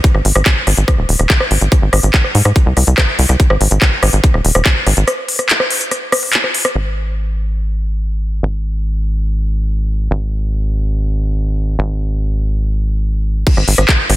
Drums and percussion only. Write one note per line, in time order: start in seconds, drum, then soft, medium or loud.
0.04 kick loud
0.04 closed hi-hat medium
0.14 cross-stick soft
0.25 open hi-hat loud
0.35 cross-stick medium
0.35 closed hi-hat medium
0.46 kick loud
0.46 clap loud
0.46 closed hi-hat medium
0.67 cross-stick soft
0.67 open hi-hat loud
0.77 closed hi-hat medium
0.88 kick loud
0.88 cross-stick medium
0.88 closed hi-hat medium
1.09 open hi-hat loud
1.19 cross-stick soft
1.19 closed hi-hat medium
1.30 kick loud
1.30 clap loud
1.30 closed hi-hat medium
1.40 cross-stick medium
1.51 open hi-hat loud
1.61 closed hi-hat medium
1.72 kick loud
1.72 cross-stick soft
1.72 closed hi-hat medium
1.93 cross-stick medium
1.93 open hi-hat loud
2.03 closed hi-hat medium
2.14 kick loud
2.14 clap loud
2.14 closed hi-hat medium
2.24 cross-stick soft
2.35 open hi-hat loud
2.45 cross-stick medium
2.45 closed hi-hat medium
2.56 kick loud
2.56 closed hi-hat medium
2.77 cross-stick soft
2.77 open hi-hat loud
2.87 closed hi-hat medium
2.98 kick loud
2.98 cross-stick medium
2.98 clap loud
2.98 closed hi-hat medium
3.19 open hi-hat loud
3.29 cross-stick soft
3.29 closed hi-hat medium
3.40 kick loud
3.40 closed hi-hat medium
3.50 cross-stick medium
3.61 open hi-hat loud
3.71 closed hi-hat medium
3.82 kick loud
3.82 cross-stick soft
3.82 clap loud
3.82 closed hi-hat medium
4.03 cross-stick medium
4.03 open hi-hat loud
4.13 closed hi-hat medium
4.24 kick loud
4.24 closed hi-hat medium
4.34 cross-stick soft
4.45 open hi-hat loud
4.55 cross-stick medium
4.55 closed hi-hat medium
4.66 kick loud
4.66 clap loud
4.66 closed hi-hat medium
4.87 cross-stick soft
4.87 open hi-hat loud
4.97 closed hi-hat medium
5.08 cross-stick medium
5.08 closed hi-hat medium
5.28 open hi-hat loud
5.39 cross-stick soft
5.39 closed hi-hat medium
5.49 clap loud
5.49 closed hi-hat medium
5.60 cross-stick medium
5.70 open hi-hat loud
5.81 closed hi-hat medium
5.91 cross-stick soft
5.91 closed hi-hat medium
6.12 cross-stick medium
6.12 open hi-hat loud
6.23 open hi-hat medium
6.33 clap loud
6.33 closed hi-hat medium
6.44 cross-stick soft
6.54 open hi-hat loud
6.65 cross-stick medium
6.65 closed hi-hat medium
13.47 kick loud
13.47 closed hi-hat medium
13.47 crash loud
13.57 cross-stick soft
13.68 open hi-hat loud
13.78 cross-stick medium
13.78 closed hi-hat medium
13.89 kick loud
13.89 clap loud
13.89 closed hi-hat medium
14.10 cross-stick soft
14.10 open hi-hat loud